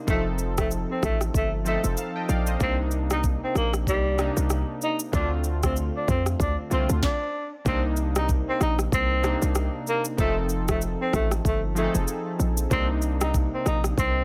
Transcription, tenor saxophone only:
0.09 0.24 A3 loud
0.59 0.70 A3 medium
0.91 1.01 C4 medium
1.04 1.19 A3 medium
1.36 1.51 A3 medium
1.67 1.82 A3 medium
2.62 2.77 C4 loud
3.12 3.23 D#4 medium
3.44 3.54 C4 medium
3.57 3.72 A#3 medium
3.88 4.35 G3 medium
4.83 4.98 D#4 medium
5.15 5.30 D4 loud
5.65 5.75 C4 medium
5.96 6.07 D4 medium
6.09 6.24 C4 medium
6.41 6.56 D4 medium
6.72 6.87 C4 medium
7.04 7.50 D4 medium
7.67 7.82 C4 loud
8.17 8.28 D#4 medium
8.49 8.59 C4 medium
8.62 8.77 D#4 medium
8.94 9.40 C4 loud
9.88 10.03 A#3 medium
10.20 10.35 A3 loud
10.70 10.80 A3 medium
11.01 11.12 C4 medium
11.15 11.30 A3 medium
11.46 11.61 A3 medium
11.78 11.93 A3 medium
12.72 12.87 C4 loud
13.22 13.33 D#4 medium
13.54 13.65 C4 medium
13.67 13.82 D#4 medium
13.99 14.24 C4 loud

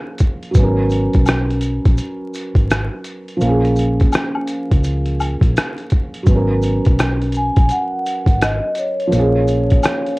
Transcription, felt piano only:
0.00 0.50 F3 medium
0.00 0.52 A#3 medium
0.00 0.54 C#4 medium
0.00 0.56 G#4 medium
0.51 3.35 F#3 medium
0.51 3.37 B3 medium
0.59 3.39 C#4 medium
0.59 3.41 A#4 medium
3.37 6.21 F3 medium
3.41 6.23 A#3 medium
3.45 6.25 C#4 medium
3.45 6.27 G#4 medium
6.23 9.07 F#3 medium
6.23 9.09 B3 medium
6.31 9.11 C#4 medium
6.35 9.13 A#4 medium
9.07 10.19 F3 medium
9.07 10.19 A#3 medium
9.15 10.19 C#4 medium
9.15 10.19 G#4 medium

